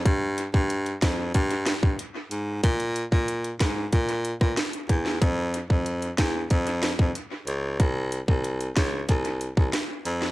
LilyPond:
<<
  \new Staff \with { instrumentName = "Baritone saxophone" } { \clef bass \time 4/4 \key f \minor \tempo 4 = 93 g,8. g,8. f,8 g,8. g,16 r8 aes,8 | bes,8. bes,8. gis,8 bes,8. bes,16 r8 e,8 | f,8. f,8. e,8 f,8. f,16 r8 des,8 | c,8. c,8. des,8 c,8. c,16 r8 f,8 | }
  \new DrumStaff \with { instrumentName = "Drums" } \drummode { \time 4/4 <hh bd>8 hh16 bd16 hh16 hh16 <hh bd ss sn>8 <hh bd>16 hh16 <hh ss sn>16 bd16 hh8 hh8 | <hh bd>16 hh16 hh16 bd16 hh16 hh16 <hh bd ss sn>8 <hh bd>16 hh16 hh16 <bd ss>16 <hh ss sn>16 hh16 <hh bd>16 sn16 | <hh bd>8 hh16 bd16 hh16 hh16 <hh bd ss sn>8 <hh bd>16 hh16 <hh ss sn>16 bd16 hh8 hh8 | <hh bd>8 hh16 bd16 hh16 hh16 <hh bd ss sn>8 <hh bd>16 hh16 hh16 bd16 <hh ss sn>8 hh16 sn16 | }
>>